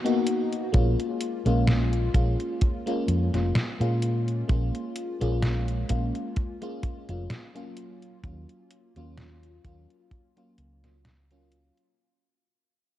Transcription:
0.04 fm electric piano A#3 B3 D#4 F#4, closed hi-hat
0.27 closed hi-hat
0.53 closed hi-hat
0.72 fingered electric bass A#1, fm electric piano G#3 A#3 C#4 F4, kick, closed hi-hat
1.00 closed hi-hat
1.21 closed hi-hat
1.45 fingered electric bass A#1, fm electric piano G#3 A#3 C#4 F4, closed hi-hat
1.68 snare, closed hi-hat
1.93 closed hi-hat
2.14 fingered electric bass A#1, fm electric piano G#3 A#3 C#4 F4, kick, closed hi-hat
2.40 closed hi-hat
2.61 kick, closed hi-hat
2.86 fm electric piano G#3 A#3 C#4 F4, closed hi-hat
3.08 fingered electric bass F2, closed hi-hat
3.33 fingered electric bass F1, fm electric piano G#3 A#3 C#4 F4, snare, closed hi-hat
3.55 snare, closed hi-hat
3.80 fingered electric bass A#2, fm electric piano G#3 A#3 C#4 F4, closed hi-hat
4.02 closed hi-hat
4.28 closed hi-hat
4.48 fingered electric bass A#1, fm electric piano G#3 A#3 C#4 F4, kick, closed hi-hat
4.75 closed hi-hat
4.96 closed hi-hat
5.21 fingered electric bass A#1, fm electric piano G#3 A#3 C#4 F4, closed hi-hat
5.42 snare, closed hi-hat
5.68 closed hi-hat
5.89 fingered electric bass A#1, fm electric piano G#3 A#3 C#4 F4, kick, closed hi-hat
6.15 closed hi-hat
6.36 kick, closed hi-hat
6.61 fm electric piano G#3 A#3 C#4 F4, closed hi-hat
6.83 kick, closed hi-hat
7.09 fingered electric bass F1, fm electric piano G#3 A#3 C#4 F4, closed hi-hat
7.30 snare, closed hi-hat
7.55 fm electric piano F#3 A#3 C#4 F4, closed hi-hat
7.77 closed hi-hat
8.02 closed hi-hat
8.24 fingered electric bass D#2, fm electric piano F#3 A#3 C#4 F4, kick, closed hi-hat
8.49 closed hi-hat
8.71 closed hi-hat
8.96 fingered electric bass D#2, fm electric piano F#3 A#3 C#4 F4, closed hi-hat
9.18 snare, closed hi-hat
9.43 closed hi-hat
9.64 fingered electric bass D#2, fm electric piano F#3 A#3 C#4 F4, kick, closed hi-hat
9.90 closed hi-hat
10.11 kick, closed hi-hat
10.37 fm electric piano F#3 A#3 C#4 F4, closed hi-hat
10.58 fingered electric bass C#2, closed hi-hat
10.84 fm electric piano F#3 A#3 C#4 F4, snare, closed hi-hat
11.05 snare, closed hi-hat
11.31 fm electric piano F#3 A#3 C#4 F4, closed hi-hat
11.52 closed hi-hat
11.77 closed hi-hat

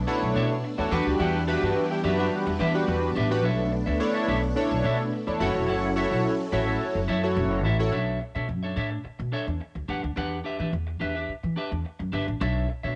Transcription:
Already playing: string machine A3 B3 D4
0.07 analog polysynth D4 E4 A4 C#5, horn section E4 F#4 B4, muted clean electric guitar stroke
0.22 upright bass B1, muted clean electric guitar stroke
0.35 upright bass B2, clean electric guitar D4 A4 C#5 E5
0.50 muted clean electric guitar stroke
0.63 muted clean electric guitar stroke
0.78 upright bass E2, analog polysynth D4 E4 A4 C#5, horn section D4 F#4 A4, muted clean electric guitar stroke
0.91 upright bass E2, string machine E3 G3 B3, analog polysynth D4 F#4 G4 B4, clean electric guitar D4 G4 B4 F#5
1.06 upright bass D2, muted clean electric guitar stroke
1.19 upright bass E2, clean electric guitar D4 G4 B4 F#5, horn section D4 E4 G4
1.47 analog polysynth D4 F#4 G4 B4, clean electric guitar D4 G4 B4 E5
1.62 upright bass G2, horn section B3 D4 F#4, clean electric guitar D4 G4 B4 E5
1.75 horn section D4 E4 G4, muted clean electric guitar stroke
1.90 horn section D4 E4 G4, muted clean electric guitar stroke
2.03 upright bass F#2, clean electric guitar D4 G4 B4 E5, analog polysynth D4 F#4 G4 B4
2.18 horn section B3 D4 F#4, clean electric guitar D4 G4 B4 E5
2.46 upright bass E2, horn section G3 B3 E4, muted clean electric guitar stroke
2.59 upright bass E3, horn section G3 B3 E4, clean electric guitar D4 G4 B4 E5
2.74 analog polysynth D4 F#4 G4 B4, muted clean electric guitar stroke
2.88 upright bass E2, muted clean electric guitar stroke
3.03 muted clean electric guitar stroke
3.15 upright bass A1, clean electric guitar D4 G4 B4 E5
3.30 analog polysynth D4 F#4 G4 B4, muted clean electric guitar stroke
3.44 upright bass B1, string machine A3 D4, clean electric guitar D4 A4 C#5 E5
3.72 muted clean electric guitar stroke
3.86 upright bass D2, clean electric guitar D4 A4 C#5 E5
4.00 analog polysynth D4 E4 A4 C#5, muted clean electric guitar stroke
4.14 clean electric guitar D4 A4 C#5 E5
4.28 upright bass B1, clean electric guitar D4 A4 C#5 E5
4.43 muted clean electric guitar stroke
4.56 analog polysynth D4 E4 A4 C#5, muted clean electric guitar stroke
4.71 upright bass B1, muted clean electric guitar stroke
4.84 upright bass B2, clean electric guitar D4 A4 C#5 E5
4.99 muted clean electric guitar stroke
5.12 muted clean electric guitar stroke
5.27 upright bass E2, analog polysynth D4 E4 A4 C#5, muted clean electric guitar stroke
5.40 upright bass F#1, string machine F#3 C#4 E4 A4, analog polysynth E4 F#4 A4 C#5, clean electric guitar E4 A4 C#5 F#5
5.55 upright bass E1, muted clean electric guitar stroke
5.68 upright bass F#1, clean electric guitar E4 A4 C#5 F#5
5.96 analog polysynth E4 F#4 A4 C#5, clean electric guitar E4 A4 C#5 E5
6.11 upright bass B1, clean electric guitar E4 A4 C#5 E5
6.24 muted clean electric guitar stroke
6.39 muted clean electric guitar stroke
6.52 upright bass A1, clean electric guitar E4 A4 C#5 E5, analog polysynth E4 F#4 A4 C#5
6.67 clean electric guitar E4 A4 C#5 E5
6.95 upright bass F#1, muted clean electric guitar stroke
7.08 upright bass F#2, clean electric guitar E4 A4 C#5 E5
7.23 analog polysynth E4 F#4 A4 C#5
7.36 upright bass F#1, muted clean electric guitar stroke
7.51 muted clean electric guitar stroke
7.64 upright bass A1, clean electric guitar E4 A4 C#5 E5
7.79 analog polysynth E4 F#4 A4 C#5, muted clean electric guitar stroke
7.92 upright bass B1, clean electric guitar D4 A4 C#5 E5
8.20 muted clean electric guitar stroke
8.35 upright bass B2, clean electric guitar D4 A4 C#5 E5
8.48 upright bass F#2, muted clean electric guitar stroke
8.63 clean electric guitar D4 A4 C#5 E5
8.76 upright bass A2, clean electric guitar D4 A4 C#5 E5
8.91 muted clean electric guitar stroke
9.04 muted clean electric guitar stroke, muted upright bass stroke
9.19 upright bass B2, muted clean electric guitar stroke
9.32 clean electric guitar D4 A4 C#5 E5
9.47 upright bass E2, muted clean electric guitar stroke
9.60 muted clean electric guitar stroke
9.75 upright bass D2, muted clean electric guitar stroke
9.88 upright bass E2, clean electric guitar D4 G4 B4 F#5
10.03 upright bass D2, muted clean electric guitar stroke
10.16 upright bass E2, clean electric guitar D4 G4 B4 F#5
10.44 clean electric guitar D4 G4 B4 E5
10.59 upright bass E3, clean electric guitar D4 G4 B4 E5
10.72 upright bass E2, muted clean electric guitar stroke
10.87 muted clean electric guitar stroke
11.00 upright bass E2, clean electric guitar D4 G4 B4 E5
11.15 clean electric guitar D4 G4 B4 E5
11.29 muted upright bass stroke
11.43 upright bass E3, muted clean electric guitar stroke
11.56 clean electric guitar D4 G4 B4 E5
11.71 upright bass E2, muted clean electric guitar stroke
11.85 muted clean electric guitar stroke
11.99 upright bass F#2, muted clean electric guitar stroke
12.12 upright bass G1, clean electric guitar D4 G4 B4 E5
12.27 upright bass A1, muted clean electric guitar stroke
12.40 upright bass B1, clean electric guitar D4 A4 C#5 E5
12.69 muted clean electric guitar stroke
12.83 upright bass B2, clean electric guitar D4 A4 C#5 E5

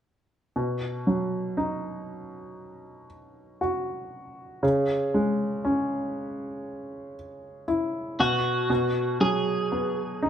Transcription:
0.56 upright piano B2
1.07 upright piano F#3
1.57 upright piano D#4
3.61 upright piano F#4
4.63 upright piano C#3
5.14 upright piano G#3
5.65 upright piano C#4
7.68 upright piano E4
8.20 upright piano B2, clean electric guitar F#4
8.70 upright piano B2
9.21 upright piano F#3, clean electric guitar G#4
9.72 upright piano B3
10.22 upright piano D#4

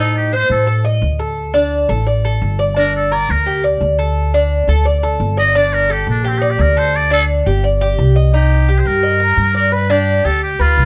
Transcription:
Already playing: upright bass A2, cuban tres D#4
0.00 muted trumpet A4
0.17 muted trumpet G4
0.33 cuban tres C5, muted trumpet C5
0.49 upright bass A2, muted trumpet A4
0.67 cuban tres A4
0.85 cuban tres D#5
1.02 upright bass D2
1.19 cuban tres A4
1.54 cuban tres D4
1.89 upright bass A1, cuban tres A4
2.07 cuban tres D5
2.25 cuban tres A4
2.42 upright bass G1
2.59 cuban tres D5
2.77 cuban tres D4, muted trumpet A#4
2.96 muted trumpet A4
3.12 cuban tres A#4, muted trumpet D5
3.29 upright bass D2, muted trumpet A#4
3.46 cuban tres G4
3.64 cuban tres D5
3.81 upright bass D2
3.99 cuban tres A4
4.34 cuban tres D4
4.68 upright bass D2, cuban tres A4
4.85 cuban tres D5
5.03 cuban tres A4
5.20 upright bass G1
5.37 cuban tres D5, muted trumpet D#5
5.55 cuban tres D4, muted trumpet D5
5.73 muted trumpet A#4
5.89 muted trumpet G4, cuban tres A4
6.07 upright bass A#1, muted trumpet D4
6.24 muted trumpet C4, cuban tres G4
6.38 muted trumpet D#4, cuban tres D5
6.50 muted trumpet G4
6.59 upright bass D2, muted trumpet A#4
6.77 cuban tres A4, muted trumpet C5
6.96 muted trumpet D5
7.11 cuban tres D4, muted trumpet A4
7.46 upright bass G1, cuban tres G4
7.64 cuban tres D5
7.81 cuban tres G4
7.99 upright bass C2
8.16 cuban tres D#5
8.34 cuban tres D#4, muted trumpet G4
8.69 cuban tres G4
8.79 muted trumpet C5
8.85 upright bass G2, muted trumpet A#4
9.03 cuban tres D#5
9.20 cuban tres A#4
9.37 upright bass G2
9.54 muted trumpet A#4, cuban tres D5
9.72 cuban tres B4, muted trumpet B4
9.90 cuban tres D4, muted trumpet G4
10.25 upright bass D2, cuban tres G4, muted trumpet A4
10.43 muted trumpet G4
10.59 upright bass D2, muted trumpet F4, cuban tres B4
10.77 upright bass C2

